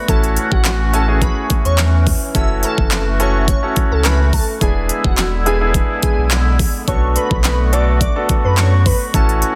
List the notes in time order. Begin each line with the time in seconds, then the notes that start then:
Already playing: A3 F#4
0.08 A1 E3 C#4 E4 F#4 A4, kick, closed hi-hat
0.24 closed hi-hat
0.37 closed hi-hat
0.52 A1 F#4, kick
0.65 snare, clap, closed hi-hat
0.93 C#4 E4 F#4 A4, closed hi-hat
1.08 C#4 E4 F#4 G#4
1.22 B4, kick, closed hi-hat
1.50 kick, closed hi-hat
1.65 E2 C#5, closed hi-hat
1.78 snare, clap, closed hi-hat
2.07 kick, open hi-hat
2.34 F#1 A3 C#4 E4 F#4 A4 E5, kick, closed hi-hat
2.63 A4, closed hi-hat
2.78 F#1, kick
2.91 snare, clap, closed hi-hat
3.20 C#4 E4 F#4 A4 C#5, closed hi-hat
3.48 C#5, kick, closed hi-hat
3.63 C#4 E4 F#4 A4
3.76 kick, closed hi-hat
3.91 C#2 A4
4.05 B4, snare, clap, closed hi-hat
4.33 A4, kick, open hi-hat
4.61 E1 D3 G#3 B3 D4 E4 G#4, kick, closed hi-hat
4.89 closed hi-hat
5.04 E1 F#4, kick
5.18 snare, clap, closed hi-hat
5.46 B3 D4 E4 G#4, closed hi-hat
5.61 B3 D4 E4 G#4
5.74 kick, closed hi-hat
6.02 G#4, kick, closed hi-hat
6.18 B1
6.31 snare, clap, closed hi-hat
6.59 kick, open hi-hat
6.88 B1 A3 B3 D4 F#4 A4 C#5, kick, closed hi-hat
7.16 B4, closed hi-hat
7.31 B1, kick
7.44 snare, clap, closed hi-hat
7.72 B3 D4 F#4 A4 D5, closed hi-hat
8.01 D5, kick, closed hi-hat
8.16 B3 D4 F#4 A4
8.29 kick, closed hi-hat
8.44 F#2 B4
8.57 C#5, snare, clap, closed hi-hat
8.86 B4, kick, open hi-hat
9.14 A1 E3 A3 C#4 E4 F#4 A4, kick, closed hi-hat
9.29 closed hi-hat
9.42 closed hi-hat